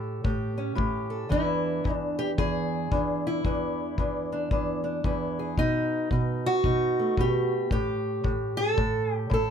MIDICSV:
0, 0, Header, 1, 3, 480
1, 0, Start_track
1, 0, Tempo, 533333
1, 1178, Time_signature, 4, 2, 24, 8
1, 8554, End_track
2, 0, Start_track
2, 0, Title_t, "Steel-string acoustic guitar"
2, 0, Program_c, 0, 25
2, 0, Note_on_c, 0, 45, 65
2, 0, Note_on_c, 0, 67, 48
2, 0, Note_on_c, 0, 69, 102
2, 206, Note_off_c, 0, 45, 0
2, 212, Note_off_c, 0, 67, 0
2, 216, Note_on_c, 0, 45, 75
2, 223, Note_on_c, 0, 67, 48
2, 519, Note_on_c, 0, 61, 47
2, 667, Note_off_c, 0, 45, 0
2, 676, Note_off_c, 0, 67, 0
2, 678, Note_on_c, 0, 45, 75
2, 686, Note_on_c, 0, 67, 48
2, 980, Note_off_c, 0, 69, 0
2, 990, Note_on_c, 0, 69, 50
2, 1147, Note_off_c, 0, 45, 0
2, 1151, Note_off_c, 0, 67, 0
2, 1152, Note_off_c, 0, 69, 0
2, 1157, Note_off_c, 0, 61, 0
2, 1162, Note_on_c, 0, 40, 69
2, 1168, Note_on_c, 0, 52, 46
2, 1175, Note_on_c, 0, 62, 47
2, 1188, Note_on_c, 0, 64, 91
2, 1654, Note_off_c, 0, 40, 0
2, 1658, Note_on_c, 0, 40, 71
2, 1755, Note_off_c, 0, 62, 0
2, 1755, Note_off_c, 0, 64, 0
2, 1755, Note_on_c, 0, 62, 91
2, 1964, Note_off_c, 0, 62, 0
2, 1968, Note_on_c, 0, 67, 101
2, 2073, Note_off_c, 0, 67, 0
2, 2137, Note_off_c, 0, 40, 0
2, 2140, Note_on_c, 0, 40, 74
2, 2146, Note_on_c, 0, 68, 98
2, 2611, Note_off_c, 0, 40, 0
2, 2621, Note_on_c, 0, 40, 73
2, 2624, Note_on_c, 0, 62, 47
2, 2924, Note_off_c, 0, 68, 0
2, 2941, Note_on_c, 0, 64, 82
2, 3079, Note_off_c, 0, 62, 0
2, 3089, Note_off_c, 0, 40, 0
2, 3100, Note_on_c, 0, 40, 71
2, 3108, Note_on_c, 0, 62, 45
2, 3573, Note_off_c, 0, 40, 0
2, 3581, Note_off_c, 0, 62, 0
2, 3584, Note_on_c, 0, 40, 65
2, 3592, Note_on_c, 0, 62, 42
2, 3881, Note_off_c, 0, 62, 0
2, 3892, Note_on_c, 0, 62, 48
2, 4054, Note_off_c, 0, 40, 0
2, 4055, Note_off_c, 0, 62, 0
2, 4064, Note_on_c, 0, 40, 71
2, 4068, Note_on_c, 0, 62, 54
2, 4344, Note_off_c, 0, 62, 0
2, 4355, Note_on_c, 0, 62, 45
2, 4527, Note_off_c, 0, 40, 0
2, 4535, Note_off_c, 0, 64, 0
2, 4538, Note_on_c, 0, 40, 72
2, 4546, Note_on_c, 0, 64, 49
2, 4853, Note_on_c, 0, 68, 46
2, 4995, Note_off_c, 0, 62, 0
2, 5001, Note_off_c, 0, 64, 0
2, 5004, Note_off_c, 0, 68, 0
2, 5013, Note_off_c, 0, 52, 0
2, 5019, Note_off_c, 0, 40, 0
2, 5023, Note_on_c, 0, 47, 62
2, 5028, Note_on_c, 0, 63, 98
2, 5492, Note_off_c, 0, 47, 0
2, 5500, Note_off_c, 0, 63, 0
2, 5503, Note_on_c, 0, 47, 63
2, 5511, Note_on_c, 0, 63, 47
2, 5818, Note_on_c, 0, 66, 108
2, 5969, Note_off_c, 0, 47, 0
2, 5971, Note_off_c, 0, 63, 0
2, 5979, Note_on_c, 0, 47, 75
2, 5982, Note_on_c, 0, 63, 51
2, 6294, Note_on_c, 0, 57, 46
2, 6453, Note_off_c, 0, 47, 0
2, 6461, Note_off_c, 0, 63, 0
2, 6464, Note_on_c, 0, 47, 72
2, 6485, Note_on_c, 0, 67, 102
2, 6770, Note_off_c, 0, 66, 0
2, 6939, Note_off_c, 0, 67, 0
2, 6942, Note_off_c, 0, 47, 0
2, 6944, Note_on_c, 0, 45, 72
2, 6950, Note_on_c, 0, 67, 99
2, 7402, Note_off_c, 0, 45, 0
2, 7413, Note_on_c, 0, 45, 70
2, 7714, Note_on_c, 0, 69, 116
2, 7883, Note_off_c, 0, 45, 0
2, 7894, Note_on_c, 0, 45, 77
2, 7905, Note_off_c, 0, 67, 0
2, 8236, Note_off_c, 0, 69, 0
2, 8236, Note_on_c, 0, 67, 116
2, 8356, Note_off_c, 0, 45, 0
2, 8367, Note_on_c, 0, 45, 75
2, 8376, Note_off_c, 0, 67, 0
2, 8402, Note_on_c, 0, 69, 88
2, 8554, Note_off_c, 0, 45, 0
2, 8554, Note_off_c, 0, 57, 0
2, 8554, Note_off_c, 0, 69, 0
2, 8554, End_track
3, 0, Start_track
3, 0, Title_t, "Drums"
3, 222, Note_on_c, 9, 36, 68
3, 312, Note_off_c, 9, 36, 0
3, 705, Note_on_c, 9, 36, 65
3, 795, Note_off_c, 9, 36, 0
3, 1186, Note_on_c, 9, 36, 67
3, 1276, Note_off_c, 9, 36, 0
3, 1667, Note_on_c, 9, 36, 54
3, 1757, Note_off_c, 9, 36, 0
3, 2145, Note_on_c, 9, 36, 75
3, 2235, Note_off_c, 9, 36, 0
3, 2625, Note_on_c, 9, 36, 68
3, 2715, Note_off_c, 9, 36, 0
3, 3102, Note_on_c, 9, 36, 62
3, 3192, Note_off_c, 9, 36, 0
3, 3582, Note_on_c, 9, 36, 58
3, 3672, Note_off_c, 9, 36, 0
3, 4059, Note_on_c, 9, 36, 74
3, 4149, Note_off_c, 9, 36, 0
3, 4539, Note_on_c, 9, 36, 60
3, 4629, Note_off_c, 9, 36, 0
3, 5018, Note_on_c, 9, 36, 62
3, 5108, Note_off_c, 9, 36, 0
3, 5497, Note_on_c, 9, 36, 58
3, 5587, Note_off_c, 9, 36, 0
3, 5976, Note_on_c, 9, 36, 65
3, 6066, Note_off_c, 9, 36, 0
3, 6457, Note_on_c, 9, 36, 60
3, 6547, Note_off_c, 9, 36, 0
3, 6938, Note_on_c, 9, 36, 67
3, 7028, Note_off_c, 9, 36, 0
3, 7420, Note_on_c, 9, 36, 58
3, 7510, Note_off_c, 9, 36, 0
3, 7900, Note_on_c, 9, 36, 77
3, 7990, Note_off_c, 9, 36, 0
3, 8383, Note_on_c, 9, 36, 68
3, 8473, Note_off_c, 9, 36, 0
3, 8554, End_track
0, 0, End_of_file